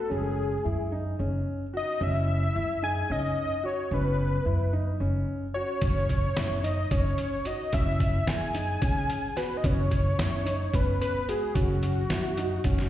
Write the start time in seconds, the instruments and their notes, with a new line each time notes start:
Already playing: analog synth lead A4
0.09 upright bass F#1, grand piano C#4, analog synth lead G#4
0.64 upright bass F#2, grand piano E4
0.92 grand piano D#4
1.19 upright bass F#1, grand piano C#4
1.74 grand piano F#4, analog synth lead D#5
2.00 upright bass F#1, grand piano C#4, analog synth lead E5
2.55 upright bass F#2, grand piano E4
2.82 grand piano D#4, analog synth lead G#5
3.10 upright bass F#1, grand piano C#4, analog synth lead D#5
3.63 grand piano F#4, analog synth lead C#5
3.91 upright bass F#1, grand piano C#4, analog synth lead B4
4.45 upright bass F#2, grand piano E4
4.73 grand piano D#4
5.00 upright bass F#1, grand piano C#4
5.54 grand piano F#4, analog synth lead C#5
5.81 upright bass F#1, grand piano C#4, kick, closed hi-hat
6.09 kick, closed hi-hat
6.36 upright bass F#2, grand piano E4, snare, closed hi-hat
6.63 grand piano D#4, analog synth lead D#5, closed hi-hat
6.91 upright bass F#1, grand piano C#4, analog synth lead C#5, kick, closed hi-hat
7.18 closed hi-hat
7.45 grand piano F#4, analog synth lead D#5, closed hi-hat
7.73 upright bass F#1, grand piano C#4, analog synth lead E5, kick, closed hi-hat
8.00 kick, closed hi-hat
8.27 upright bass F#2, grand piano E4, analog synth lead G#5, snare, closed hi-hat
8.54 grand piano D#4, closed hi-hat
8.81 upright bass F#1, grand piano C#4, kick, closed hi-hat
9.10 closed hi-hat
9.36 grand piano F#4, analog synth lead B4, snare, closed hi-hat
9.57 analog synth lead D#5
9.64 upright bass F#1, grand piano C#4, analog synth lead C#5, kick, closed hi-hat
9.91 kick, closed hi-hat
10.18 upright bass F#2, grand piano E4, snare, closed hi-hat
10.45 grand piano D#4, closed hi-hat
10.73 upright bass F#1, grand piano C#4, analog synth lead B4, kick, closed hi-hat
11.01 analog synth lead B4, closed hi-hat
11.28 grand piano F#4, analog synth lead G#4, closed hi-hat
11.54 upright bass F#1, grand piano C#4, analog synth lead F#4, kick, closed hi-hat
11.83 closed hi-hat
12.10 upright bass F#2, grand piano E4, snare, closed hi-hat
12.37 grand piano D#4, closed hi-hat
12.64 upright bass F#1, grand piano C#4, kick, closed hi-hat
12.78 snare